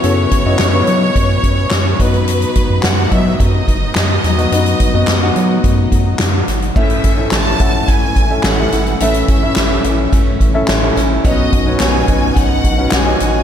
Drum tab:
CC |----------------|----------------|----------------|x---------------|
HH |x-x-x-x-x-x-x-xx|xxx-x-x-x-x-x-xx|xxx-x-x-x-x-x-xx|-xx-x-x-x-x-x-xx|
CP |----x-------x---|----x-------x---|----x-------x---|----x-------x---|
SD |----o-------o---|----o-------o-o-|----o-------o-o-|----o-------o-o-|
BD |--o-----o-o---o-|--o---o-o-o-----|--o-----o-o-----|o-o---o-o-o-----|

CC |----------------|----------------|
HH |xxx-x-x-x-x-x-x-|x-x-x-x-x-x-x-x-|
CP |----x-------x---|----x-------x---|
SD |----o-------o-o-|----o-------o---|
BD |--o-----o-o-----|o-o---o-o-o-----|